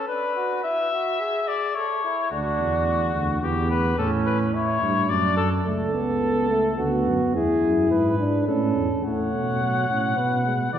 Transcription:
0.07 D4 B4
0.36 F#4
0.64 E4 E5
0.92 F#4
1.20 G#4
1.48 D5
1.75 A4 C#5
2.04 E4
2.31 D2 D4 F#4
2.59 E2
3.14 D2
3.42 E2 B3 G4
3.70 B4
3.98 A2 C#4 A4
4.26 B4
4.54 E4 C#5
4.82 G2
5.09 F#2 D4 D5
5.36 A4
5.65 C#2 A3 A4
5.94 B3
6.50 A3
6.78 D2 B3 F#4
7.07 F#2
7.35 E2 E4 G#4
7.63 F#2
7.91 G#2 B4
8.19 D4
8.47 A2 C#4 A4
8.76 E2
9.04 A2 A3 C#5 F#5
9.33 B2
9.62 F#3
9.90 A2 C#4
10.17 B2 B3 B4
10.46 G#3
10.73 E3 B3 G#4 D5

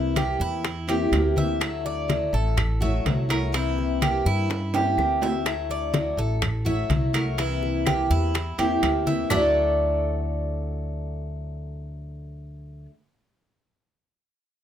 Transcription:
Already playing: C2 C3 E3 A#3 C4 E4
0.15 E3 A#3 C4 E4 G4, high bongo, high conga, high timbale, claves
0.40 E2 E4, high conga
0.64 muted steel-string acoustic guitar stroke, high bongo, high conga, high timbale
0.87 E3 A#3 C4 E4 G4, high bongo, high conga, high timbale
1.12 D2 E3 A#3 C4 E4, high bongo, low bongo, high conga, high timbale, low timbale, claves
1.36 E3 A#3 C4 E4 E5, high bongo, high conga
1.60 D3 F#3 A3 E4 F#4, high bongo, high conga, high timbale, claves
1.85 D5, high bongo, high conga
2.08 F#3 A3 E4 F#4, high bongo, high conga, high timbale
2.33 A1 A4, high conga
2.57 muted steel-string acoustic guitar stroke, high bongo, high conga, low conga, high timbale, claves
2.80 F#3 A3 E4 F#4 E5, high bongo, high conga, low conga
3.05 C2 F#3 A3 E4 F#4, high bongo, low bongo, high conga, high timbale, low timbale
3.29 F#3 A3 E4 F#4 A#4, high bongo, high conga, high timbale, claves
3.52 C3 E3 A#3 C4 E4, high bongo, high conga, high timbale
3.78 high bongo, high conga
4.01 E3 A#3 C4 E4 G4, high bongo, high conga, high timbale, claves
4.26 G2 E4, high conga
4.50 muted steel-string acoustic guitar stroke, high bongo, high conga, high timbale
4.74 E3 A#3 C4 E4 G4, high bongo, high conga, high timbale
4.97 D2 E3 A#3 C4 E4, high bongo, low bongo, high conga, claves
5.21 E3 A#3 C4 E4 E5, high bongo, low timbale
5.46 D3 F#3 A3 E4 F#4, high bongo, high conga, high timbale, claves
5.70 D5, high bongo, high conga
5.93 F#3 A3 E4 F#4, high bongo, high conga, high timbale
6.17 A1 A4, high conga
6.42 muted steel-string acoustic guitar stroke, high bongo, high conga, low conga, high timbale, claves
6.65 F#3 A3 E4 F#4 E5, high bongo, high conga, low conga
6.89 C2 F#3 A3 E4 F#4, high bongo, low bongo, high conga, high timbale
7.13 F#3 A3 E4 F#4 A#4, high bongo, high conga, high timbale, claves
7.37 C3 E3 A#3 C4 E4, high bongo, high conga, high timbale
7.62 high bongo, high conga
7.86 E3 A#3 C4 E4 G4, high bongo, high conga, high timbale, claves
8.10 E2 E4, high conga
8.34 muted steel-string acoustic guitar stroke, high bongo, high conga, high timbale
8.58 E2 E3 A#3 C4 E4 G4, high bongo, high conga, high timbale
8.83 D2 E3 A#3 C4 E4, high bongo, low bongo, high conga, high timbale, claves
9.06 E3 A#3 C4 E4 E5, high bongo, high conga
9.30 D2 D3 F#3 A3 D4 E4 F#4 A4 D5, low bongo, low conga, low timbale, claves

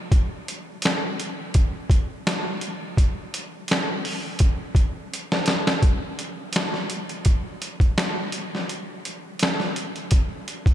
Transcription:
0.12 kick, closed hi-hat
0.48 closed hi-hat
0.82 finger snap, snare, closed hi-hat
1.20 closed hi-hat
1.54 kick, closed hi-hat
1.90 kick, closed hi-hat
2.27 finger snap, snare, closed hi-hat
2.61 closed hi-hat
2.97 kick, closed hi-hat
3.34 closed hi-hat
3.68 finger snap, snare, closed hi-hat
4.05 open hi-hat
4.39 kick, closed hi-hat
4.75 kick, closed hi-hat
5.14 closed hi-hat
5.32 snare
5.46 snare, closed hi-hat
5.67 snare
5.82 kick, closed hi-hat
6.19 closed hi-hat
6.53 finger snap, snare, closed hi-hat
6.74 snare
6.90 closed hi-hat
7.09 closed hi-hat
7.25 kick, closed hi-hat
7.62 closed hi-hat
7.80 kick, closed hi-hat
7.98 finger snap, snare, closed hi-hat
8.32 closed hi-hat
8.55 snare
8.69 closed hi-hat
9.05 closed hi-hat
9.39 finger snap, snare, closed hi-hat
9.60 snare
9.76 closed hi-hat
9.96 closed hi-hat
10.11 kick, closed hi-hat
10.48 closed hi-hat
10.66 kick, closed hi-hat

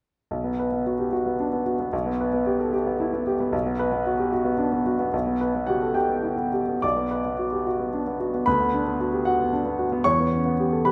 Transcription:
0.31 B1
0.44 B3
0.59 B4
0.72 B3
0.86 F#4
0.99 G4
1.13 F#4
1.26 B3
1.40 D4
1.53 B3
1.66 F#4
1.80 B3
1.93 B1
2.06 B3
2.21 B4
2.33 B3
2.47 G4
2.60 A4
2.73 G4
2.87 B3
3.00 E4
3.13 B3
3.27 G4
3.40 B3
3.52 B1
3.66 B3
3.79 B4
3.92 B3
4.07 F#4
4.19 G4
4.32 F#4
4.45 B3
4.58 D4
4.73 B3
4.86 F#4
4.99 B3
5.13 B1
5.27 B3
5.41 B4
5.55 B3
5.67 F#4 G4 F#5
5.82 A4
5.94 G4 G5
6.09 B3
6.23 E4
6.38 B3
6.53 G4
6.69 B3
6.82 B1 D5 D6
6.96 B3
7.11 B4
7.25 B3
7.39 F#4
7.52 G4
7.66 F#4
7.79 B3
7.94 D4
8.07 B3
8.20 F#4
8.34 B3
8.46 D2 B4 B5
8.60 B3
8.74 D4
8.86 B3
9.01 F#4
9.13 G4
9.25 F#4 F#5
9.40 B3
9.53 D4
9.66 B3
9.79 F#4
9.92 B3
10.04 E2 C#5 C#6
10.20 B3
10.33 C#4
10.46 B3
10.60 G4
10.73 A4
10.85 G4 B4 B5

